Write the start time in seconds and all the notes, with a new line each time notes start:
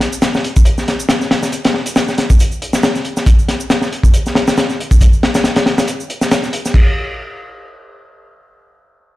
0.00 snare, closed hi-hat
0.13 shaker
0.22 snare, closed hi-hat, shaker
0.34 snare, shaker
0.44 closed hi-hat
0.56 kick, shaker
0.65 closed hi-hat, shaker
0.78 snare, shaker
0.88 snare, closed hi-hat
1.00 shaker
1.09 snare, closed hi-hat, shaker
1.21 snare, shaker
1.31 snare, closed hi-hat
1.43 snare, shaker
1.52 closed hi-hat, shaker
1.65 snare, closed hi-hat, shaker
1.74 snare
1.86 closed hi-hat, shaker
1.96 snare, closed hi-hat, shaker
2.08 snare, shaker
2.18 snare, closed hi-hat
2.30 kick, shaker
2.40 closed hi-hat, shaker
2.52 shaker
2.62 closed hi-hat
2.73 snare, shaker
2.83 snare, closed hi-hat, shaker
2.95 snare, shaker
3.05 closed hi-hat
3.17 snare, shaker
3.26 kick, closed hi-hat, shaker
3.39 shaker
3.48 snare, closed hi-hat
3.60 shaker
3.70 snare, closed hi-hat, shaker
3.82 snare, shaker
3.93 closed hi-hat
4.03 kick, shaker
4.14 closed hi-hat, shaker
4.26 snare, shaker
4.35 snare, closed hi-hat
4.48 snare, closed hi-hat, shaker
4.57 snare, closed hi-hat, shaker
4.70 snare, shaker
4.80 closed hi-hat
4.91 kick, shaker
5.01 kick, closed hi-hat, shaker
5.13 shaker
5.23 snare, closed hi-hat
5.34 snare, closed hi-hat, shaker
5.44 snare, closed hi-hat, shaker
5.56 snare, closed hi-hat, shaker
5.66 snare, closed hi-hat
5.78 snare, closed hi-hat, shaker
5.88 closed hi-hat, shaker
6.00 shaker
6.10 closed hi-hat
6.21 snare, shaker
6.31 snare, closed hi-hat, shaker
6.43 snare, shaker
6.53 closed hi-hat
6.65 snare, shaker
6.74 kick, crash